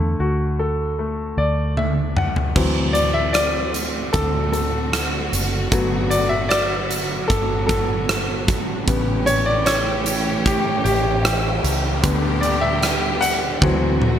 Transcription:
Already playing: grand piano D3 A3
0.00 fingered electric bass E2
0.19 fingered electric bass D2, grand piano F#4
0.59 grand piano A4
0.99 grand piano A3
1.37 fingered electric bass D2, grand piano D5
1.77 grand piano E5, high tom
2.17 grand piano F#5, mid tom
2.36 floor tom
2.55 fingered electric bass D2, string section D3 A3 C4 F#4, grand piano E3 F#3 C4, kick, crash
2.93 grand piano D5, closed hi-hat
3.14 grand piano E5
3.33 grand piano D5, cross-stick, closed hi-hat
3.74 closed hi-hat
4.13 fingered electric bass D2, grand piano A4, kick, closed hi-hat
4.52 grand piano A4, closed hi-hat
4.93 cross-stick, closed hi-hat
5.33 fingered electric bass F#1, closed hi-hat
5.71 fingered electric bass G1, string section F#3 B3, grand piano F#3 A3 B3, kick, closed hi-hat
6.10 grand piano D5, closed hi-hat
6.29 grand piano E5
6.49 grand piano D5, cross-stick, closed hi-hat
6.91 closed hi-hat
7.28 fingered electric bass G1, grand piano A4, kick, closed hi-hat
7.67 grand piano A4, kick, closed hi-hat
8.09 cross-stick, closed hi-hat
8.48 kick, closed hi-hat
8.87 fingered electric bass A1, grand piano C#3 G3 B3, string section E3 A3 C#4 G4, kick, closed hi-hat, noise sweep
9.26 grand piano C#5, closed hi-hat
9.46 grand piano D5
9.66 grand piano C#5, cross-stick, closed hi-hat
10.06 closed hi-hat
10.46 grand piano G4, kick, closed hi-hat
10.84 fingered electric bass A1, grand piano G4, closed hi-hat
11.25 cross-stick, closed hi-hat
11.64 fingered electric bass C#2, closed hi-hat
12.03 fingered electric bass D2, string section D3 G3 B3 G4, grand piano D3 G3 B3, kick, closed hi-hat
12.41 grand piano D5, closed hi-hat
12.61 grand piano E5
12.83 cross-stick, closed hi-hat
13.21 grand piano F#5, closed hi-hat
13.61 fingered electric bass D2, grand piano E3 F#3 C4, string section A3 C4 F#4, kick, high tom
14.02 mid tom

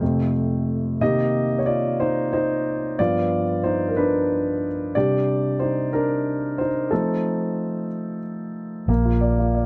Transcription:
Already playing: grand piano F4 C5
0.01 grand piano F2 C3 A3
1.01 grand piano C3 D#3 A#3 G4 D#5
1.59 grand piano C#5
1.66 grand piano F4 D5
2.00 grand piano D#4 C5
2.33 grand piano D#4 C5
2.99 grand piano G2 F3 B3 F4 D5
3.64 grand piano D#4 C5
3.88 grand piano A#4
3.96 grand piano D4 B4
4.95 grand piano C3 G3 D4 G4 D5
5.59 grand piano D#4 C5
5.93 grand piano D4 A#4
6.58 grand piano D#4 C5
6.91 grand piano F3 A3 C4 D#4 A4
8.88 fingered electric bass A#1, grand piano A#3
9.05 grand piano F4
9.21 grand piano D5
9.39 grand piano F4
9.55 grand piano D5

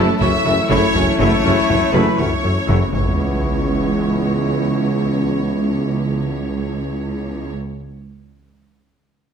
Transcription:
Already playing: analog synth bass F#2, analog synth pad E3 A3 C#4 C#5, synth pluck F#3, viola section A3 E4, french horn section A3 E4, violin section A4 A5, grand piano B4 B5
0.20 tuba F#1, double bass section F#1, cello section F#2, analog synth bass F#2, viola section F#3 C#4, synth pluck A3, grand piano C#5 C#6, violin section E5 E6, taiko low
0.45 tuba F#1, double bass section F#1, analog synth bass F#2, cello section F#2, viola section E3 A3, synth pluck A3, taiko rim
0.69 tuba F#1, double bass section F#1, analog synth bass F#2, cello section F#2, synth pluck F#3, viola section A3 E4, violin section C#5 C#6, grand piano B5, taiko
0.94 tuba F#1, double bass section F#1, analog synth bass F#2, cello section F#2, viola section F#3 C#4, synth pluck A3, taiko low
1.19 tuba F#1, double bass section F#1, analog synth bass F#2, cello section F#2, synth pluck F#3, viola section A3 E4, violin section C#5 C#6, taiko
1.44 tuba F#1, double bass section F#1, analog synth bass F#2, cello section F#2, viola section F#3 C#4, synth pluck A3, taiko low
1.68 tuba F#1, double bass section F#1, analog synth bass F#2, cello section F#2, viola section E3 A3, synth pluck E4, taiko low
1.93 tuba F#1, double bass section F#1, cello section F#2, analog synth bass F#2, synth pluck F#3, viola section A3 E4, violin section B4 B5, taiko rim
2.18 tuba F#1, double bass section F#1, cello section F#2, analog synth bass F#2, viola section F#3 C#4, synth pluck A3, violin section C#5 C#6, taiko low
2.42 tuba F#1, double bass section F#1, analog synth bass F#2, cello section F#2, viola section E3 A3, synth pluck A3
2.67 tuba F#1, double bass section F#1, cello section F#2, analog synth bass F#2, synth pluck F#3, viola section A3 E4, taiko
2.92 tuba C#2, double bass section C#2, cello section C#2, analog synth pad E3 G#3 C#4 B4, viola section B3 E4, french horn section B3 E4, violin section C#5 C#6, taiko, sub drop

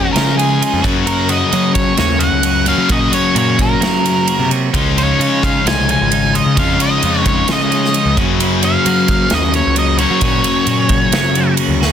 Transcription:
Already playing: overdriven electric guitar C#3 G#3 C#4, clean electric guitar F3 G#3 D#4 F4, lead electric guitar G#4
0.13 clean electric guitar C#3 F3 G#3 D#4, picked electric bass C#3, lead electric guitar A#4, snare, ride
0.17 clean electric guitar F4
0.36 clean electric guitar G#3 D#4 F4, lead electric guitar G#4, ride
0.60 clean electric guitar F3 G#3 D#4 F4, ride
0.73 picked electric bass F2
0.82 overdriven electric guitar F#2 C#3 F#3, picked electric bass F#2, clean electric guitar F#3 A#3 C#4 F#4, kick, ride
1.05 clean electric guitar F#3 A#3 C#4 F#4, lead electric guitar A#4, ride
1.29 clean electric guitar A#3 C#4 F#4, lead electric guitar D#5, ride
1.51 clean electric guitar F#3 A#3 C#4 F#4, picked electric bass F#3, ride
1.74 lead electric guitar C#5, kick, ride
1.97 picked electric bass D#2, clean electric guitar F#3 A#3 C#4 F#4, lead electric guitar C#5, snare, ride
2.19 clean electric guitar C#4 F#4, lead electric guitar F#5, ride
2.23 clean electric guitar A#3
2.32 picked electric bass C#2
2.43 clean electric guitar F#3 A#3 C#4 F#4, ride
2.65 overdriven electric guitar F#2 C#3 F#3, clean electric guitar A#3 C#4 F#4, lead electric guitar F5, ride
2.78 picked electric bass F#3
2.88 picked electric bass A#2, clean electric guitar F#3 A#3 C#4 F#4, lead electric guitar D#5, kick, ride
3.10 clean electric guitar A#3 C#4 F#4, lead electric guitar C#5, ride
3.33 picked electric bass A#2, clean electric guitar F#3 A#3 C#4 F#4, ride
3.38 lead electric guitar C#5
3.59 lead electric guitar A#4, kick, ride
3.80 clean electric guitar F#3 A#3 C#4 F#4, picked electric bass F#3, snare, ride
4.03 clean electric guitar A#3 C#4 F#4, ride
4.26 clean electric guitar F#3 A#3 F#4, ride
4.39 picked electric bass C3
4.49 clean electric guitar A#3 C#4 F#4, ride
4.73 picked electric bass C#2, clean electric guitar C#3 F3 G#3 D#4 F4, overdriven electric guitar C#3 G#3 C#4, kick, ride
4.96 clean electric guitar G#3 D#4 F4, lead electric guitar C#5, ride
5.18 picked electric bass C#3, clean electric guitar F3 G#3 D#4 F4, ride
5.43 lead electric guitar F5, kick, ride
5.66 picked electric bass C2, clean electric guitar F3 G#3 D#4 F4, lead electric guitar G#5, snare, ride
5.89 clean electric guitar G#3 D#4 F4, lead electric guitar G#5, ride
6.01 picked electric bass G#1
6.11 clean electric guitar F3 G#3 D#4 F4, ride
6.33 clean electric guitar G#3 D#4 F4, lead electric guitar D#5, ride
6.46 picked electric bass C#3
6.55 picked electric bass F2, clean electric guitar C#3 F3 G#3 D#4 F4, overdriven electric guitar C#3 G#3, lead electric guitar F5, kick, ride
6.59 overdriven electric guitar C#4
6.79 clean electric guitar G#3 D#4 F4, lead electric guitar D#5, ride
7.02 picked electric bass F2, clean electric guitar F3 G#3 D#4 F4, ride
7.26 lead electric guitar C#5, kick, ride
7.48 clean electric guitar C#3 F3 G#3 D#4 F4, picked electric bass C#3, snare, ride
7.53 lead electric guitar D#5
7.71 clean electric guitar G#3 D#4 F4, ride
7.85 snare
7.94 clean electric guitar F3 G#3 D#4 F4, ride
8.05 picked electric bass C#2
8.17 overdriven electric guitar F#2 C#3 F#3, picked electric bass F#2, clean electric guitar F#2 C#3 F#3 A#3 C#4 F#4, kick, ride
8.39 clean electric guitar F#2 C#3 F#3 A#3 C#4 F#4, ride
8.62 clean electric guitar F#3 A#3 C#4 F#4, lead electric guitar F5, ride
8.85 clean electric guitar F#3 A#3 C#4 F#4, picked electric bass F#3, ride
9.08 kick, ride
9.30 picked electric bass D#2, clean electric guitar F#2 C#3 F#3 A#3 C#4 F#4, snare, ride
9.34 lead electric guitar D#5
9.52 clean electric guitar F#3 A#3 C#4 F#4, lead electric guitar C#5, ride
9.67 picked electric bass C#2
9.75 clean electric guitar F#3 A#3 C#4 F#4, lead electric guitar D#5, ride
9.98 overdriven electric guitar F#2 C#3 F#3, clean electric guitar F#3 A#3 C#4 F#4, lead electric guitar C#5, ride
10.10 picked electric bass F#3
10.21 clean electric guitar F#2 C#3 F#3 A#3 C#4 F#4, picked electric bass A#2, kick, ride
10.44 clean electric guitar F#3 A#3 C#4 F#4, ride
10.66 picked electric bass A#2, clean electric guitar F#3 A#3 C#4 F#4, ride
10.89 kick, ride
11.12 clean electric guitar F#2 C#3 F#3 A#3 C#4 F#4, picked electric bass F#3, snare, ride
11.34 clean electric guitar F#3 A#3 C#4 F#4, ride
11.57 clean electric guitar F#3 A#3 C#4 F#4, ride
11.68 picked electric bass D2
11.81 clean electric guitar F#3 A#3 C#4 F#4, snare

